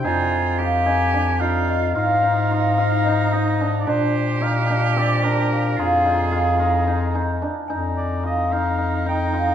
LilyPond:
<<
  \new Staff \with { instrumentName = "Celesta" } { \time 7/8 \key aes \lydian \tempo 4 = 110 r2. ees''8~ | ees''8 r4 f''8 ees''4.~ | ees''8 r2 r8 f''16 bes''16~ | bes''8. r4. r16 aes''4 |
aes''2 r4. | }
  \new Staff \with { instrumentName = "Oboe" } { \time 7/8 \key aes \lydian aes''4 r8 aes''4 f''4 | f''4. f''4 ees''8. r32 d''32 | c''4 f''4 d''8 bes'4 | aes'2. r8 |
r8 d''8 ees''8 f''4 g''4 | }
  \new Staff \with { instrumentName = "Cello" } { \time 7/8 \key aes \lydian f'4 g'4. f'4 | ees'2.~ ees'8 | g'2.~ g'8 | f'4. ees'4. r8 |
ees'2.~ ees'8 | }
  \new Staff \with { instrumentName = "Hammered dulcimer" } { \time 7/8 \key aes \lydian ees'4 f'8 ees'8 d'8 ees'4 | f'8 ees'8 f'8 f'8 ees'8 ees'8 d'8 | d'4 ees'8 d'8 c'8 d'4 | f'8 ees'8 f'8 f'8 ees'8 ees'8 d'8 |
ees'4 f'8 ees'8 ees'8 ees'8 f'8 | }
  \new Staff \with { instrumentName = "Bass clarinet" } { \clef bass \time 7/8 \key aes \lydian f,2.~ f,8 | aes,2.~ aes,8 | bes,2.~ bes,8 | f,2.~ f,8 |
f,2.~ f,8 | }
>>